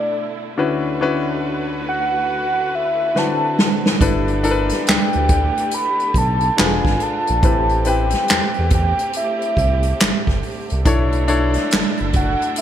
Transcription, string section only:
0, 0, Header, 1, 2, 480
1, 0, Start_track
1, 0, Key_signature, 2, "major"
1, 0, Tempo, 857143
1, 320, Time_signature, 4, 2, 24, 8
1, 7064, End_track
2, 0, Start_track
2, 0, Title_t, "String section"
2, 0, Program_c, 0, 48
2, 0, Note_on_c, 0, 50, 85
2, 0, Note_on_c, 0, 57, 76
2, 0, Note_on_c, 0, 64, 91
2, 298, Note_off_c, 0, 57, 0
2, 303, Note_off_c, 0, 64, 0
2, 304, Note_off_c, 0, 50, 0
2, 318, Note_on_c, 0, 38, 72
2, 318, Note_on_c, 0, 50, 75
2, 319, Note_on_c, 0, 71, 72
2, 320, Note_on_c, 0, 66, 87
2, 1764, Note_on_c, 0, 60, 66
2, 2220, Note_off_c, 0, 38, 0
2, 2221, Note_off_c, 0, 66, 0
2, 2221, Note_off_c, 0, 71, 0
2, 2238, Note_off_c, 0, 60, 0
2, 2248, Note_on_c, 0, 67, 87
2, 2249, Note_on_c, 0, 57, 73
2, 2250, Note_on_c, 0, 59, 72
2, 3670, Note_off_c, 0, 67, 0
2, 3671, Note_off_c, 0, 57, 0
2, 3671, Note_off_c, 0, 59, 0
2, 3679, Note_on_c, 0, 62, 74
2, 3680, Note_on_c, 0, 56, 63
2, 3680, Note_on_c, 0, 65, 84
2, 4155, Note_off_c, 0, 56, 0
2, 4155, Note_off_c, 0, 62, 0
2, 4155, Note_off_c, 0, 65, 0
2, 4163, Note_on_c, 0, 67, 93
2, 4166, Note_on_c, 0, 57, 71
2, 4168, Note_on_c, 0, 60, 72
2, 6057, Note_off_c, 0, 50, 0
2, 6063, Note_off_c, 0, 67, 0
2, 6064, Note_off_c, 0, 57, 0
2, 6065, Note_off_c, 0, 60, 0
2, 6078, Note_on_c, 0, 50, 74
2, 6079, Note_on_c, 0, 64, 85
2, 6082, Note_on_c, 0, 57, 70
2, 6083, Note_on_c, 0, 62, 81
2, 7064, Note_off_c, 0, 50, 0
2, 7064, Note_off_c, 0, 57, 0
2, 7064, Note_off_c, 0, 62, 0
2, 7064, Note_off_c, 0, 64, 0
2, 7064, End_track
0, 0, End_of_file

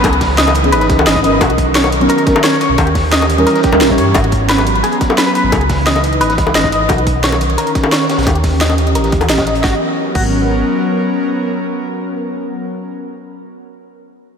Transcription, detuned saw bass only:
0, 0, Header, 1, 2, 480
1, 0, Start_track
1, 0, Key_signature, 5, "minor"
1, 0, Tempo, 342857
1, 53, Time_signature, 4, 2, 24, 8
1, 20128, End_track
2, 0, Start_track
2, 0, Title_t, "Detuned saw bass"
2, 0, Program_c, 0, 39
2, 55, Note_on_c, 0, 37, 95
2, 1017, Note_on_c, 0, 32, 85
2, 1038, Note_off_c, 0, 37, 0
2, 1255, Note_on_c, 0, 37, 94
2, 1276, Note_off_c, 0, 32, 0
2, 1471, Note_off_c, 0, 37, 0
2, 1495, Note_on_c, 0, 32, 79
2, 1955, Note_off_c, 0, 32, 0
2, 1975, Note_on_c, 0, 35, 94
2, 2915, Note_off_c, 0, 35, 0
2, 3776, Note_on_c, 0, 35, 77
2, 3881, Note_off_c, 0, 35, 0
2, 3894, Note_on_c, 0, 39, 100
2, 4835, Note_off_c, 0, 39, 0
2, 5217, Note_on_c, 0, 39, 97
2, 5335, Note_on_c, 0, 34, 77
2, 5356, Note_off_c, 0, 39, 0
2, 5573, Note_on_c, 0, 43, 93
2, 5594, Note_off_c, 0, 34, 0
2, 5790, Note_off_c, 0, 43, 0
2, 5813, Note_on_c, 0, 32, 96
2, 6754, Note_off_c, 0, 32, 0
2, 7616, Note_on_c, 0, 32, 81
2, 7722, Note_off_c, 0, 32, 0
2, 7733, Note_on_c, 0, 37, 96
2, 8694, Note_on_c, 0, 32, 84
2, 8715, Note_off_c, 0, 37, 0
2, 8934, Note_on_c, 0, 37, 90
2, 8955, Note_off_c, 0, 32, 0
2, 9150, Note_off_c, 0, 37, 0
2, 9174, Note_on_c, 0, 32, 79
2, 9634, Note_off_c, 0, 32, 0
2, 9654, Note_on_c, 0, 35, 94
2, 10595, Note_off_c, 0, 35, 0
2, 11457, Note_on_c, 0, 35, 78
2, 11562, Note_off_c, 0, 35, 0
2, 11574, Note_on_c, 0, 39, 95
2, 12535, Note_on_c, 0, 34, 83
2, 12556, Note_off_c, 0, 39, 0
2, 12775, Note_on_c, 0, 39, 90
2, 12796, Note_off_c, 0, 34, 0
2, 12991, Note_off_c, 0, 39, 0
2, 13012, Note_on_c, 0, 34, 76
2, 13474, Note_off_c, 0, 34, 0
2, 13494, Note_on_c, 0, 32, 91
2, 13629, Note_off_c, 0, 32, 0
2, 14214, Note_on_c, 0, 32, 96
2, 14883, Note_off_c, 0, 32, 0
2, 20128, End_track
0, 0, End_of_file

